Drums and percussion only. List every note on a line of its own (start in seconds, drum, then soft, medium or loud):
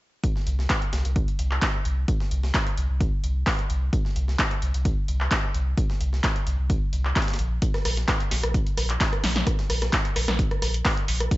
0.24 kick loud
0.24 closed hi-hat medium
0.36 snare soft
0.47 closed hi-hat medium
0.59 snare soft
0.70 kick loud
0.70 snare loud
0.70 clap loud
0.70 closed hi-hat medium
0.82 closed hi-hat soft
0.93 snare loud
0.93 closed hi-hat medium
1.05 closed hi-hat soft
1.16 kick loud
1.16 closed hi-hat medium
1.28 closed hi-hat soft
1.39 closed hi-hat medium
1.51 clap soft
1.62 kick loud
1.62 snare loud
1.62 clap loud
1.62 closed hi-hat medium
1.85 closed hi-hat medium
2.08 kick loud
2.08 closed hi-hat medium
2.20 snare medium
2.31 closed hi-hat medium
2.43 snare medium
2.54 kick loud
2.54 snare loud
2.54 clap loud
2.54 closed hi-hat medium
2.67 closed hi-hat soft
2.77 closed hi-hat medium
3.01 kick loud
3.01 closed hi-hat medium
3.24 closed hi-hat medium
3.47 kick loud
3.47 snare loud
3.47 clap loud
3.47 open hi-hat medium
3.59 closed hi-hat soft
3.70 closed hi-hat medium
3.93 kick loud
3.93 closed hi-hat medium
4.05 snare soft
4.16 closed hi-hat medium
4.28 snare soft
4.39 kick loud
4.39 snare loud
4.39 clap loud
4.39 closed hi-hat medium
4.51 closed hi-hat soft
4.62 closed hi-hat medium
4.74 closed hi-hat soft
4.85 kick loud
4.85 closed hi-hat medium
5.08 closed hi-hat medium
5.21 clap soft
5.31 kick loud
5.31 snare loud
5.31 clap loud
5.31 closed hi-hat medium
5.54 closed hi-hat medium
5.78 kick loud
5.78 closed hi-hat medium
5.90 snare medium
6.01 closed hi-hat medium
6.13 snare soft
6.24 kick loud
6.24 snare loud
6.24 clap loud
6.24 closed hi-hat medium
6.36 closed hi-hat soft
6.47 closed hi-hat medium
6.70 kick loud
6.70 closed hi-hat medium
6.93 closed hi-hat medium
7.05 clap soft
7.16 kick loud
7.16 snare medium
7.16 clap loud
7.16 closed hi-hat medium
7.22 snare medium
7.22 closed hi-hat medium
7.28 snare medium
7.28 closed hi-hat medium
7.34 snare medium
7.34 closed hi-hat medium
7.39 closed hi-hat medium
7.62 kick loud
7.62 closed hi-hat medium
7.62 closed hi-hat soft
7.74 cross-stick medium
7.74 snare soft
7.74 closed hi-hat soft
7.85 cross-stick medium
7.85 closed hi-hat medium
7.85 open hi-hat loud
7.97 snare soft
7.97 closed hi-hat soft
8.08 kick loud
8.08 cross-stick medium
8.08 snare loud
8.08 clap loud
8.08 closed hi-hat medium
8.08 closed hi-hat soft
8.20 closed hi-hat soft
8.31 snare loud
8.31 closed hi-hat medium
8.31 open hi-hat loud
8.43 cross-stick medium
8.43 closed hi-hat soft
8.54 kick loud
8.54 closed hi-hat medium
8.54 closed hi-hat soft
8.67 closed hi-hat soft
8.77 cross-stick medium
8.77 closed hi-hat medium
8.77 open hi-hat loud
8.90 clap soft
8.90 closed hi-hat soft
9.01 kick loud
9.01 snare loud
9.01 clap loud
9.01 closed hi-hat medium
9.13 cross-stick medium
9.13 closed hi-hat soft
9.24 snare medium
9.24 closed hi-hat medium
9.24 open hi-hat loud
9.36 snare medium
9.36 closed hi-hat medium
9.47 kick loud
9.47 cross-stick medium
9.47 closed hi-hat medium
9.59 snare medium
9.59 closed hi-hat soft
9.70 cross-stick medium
9.70 closed hi-hat medium
9.70 open hi-hat medium
9.82 cross-stick medium
9.82 snare medium
9.82 closed hi-hat medium
9.93 kick loud
9.93 snare loud
9.93 clap loud
9.93 closed hi-hat medium
9.93 closed hi-hat soft
10.05 closed hi-hat soft
10.16 cross-stick medium
10.16 closed hi-hat medium
10.16 open hi-hat loud
10.28 cross-stick medium
10.28 snare medium
10.28 closed hi-hat medium
10.39 kick loud
10.39 closed hi-hat soft
10.39 closed hi-hat medium
10.51 cross-stick medium
10.51 closed hi-hat soft
10.62 cross-stick medium
10.62 closed hi-hat medium
10.62 open hi-hat loud
10.74 closed hi-hat medium
10.85 kick loud
10.85 cross-stick medium
10.85 snare loud
10.85 clap loud
10.85 closed hi-hat soft
10.85 open hi-hat medium
10.97 closed hi-hat soft
11.08 closed hi-hat medium
11.08 open hi-hat loud
11.20 cross-stick medium
11.20 closed hi-hat medium
11.31 kick loud
11.31 closed hi-hat medium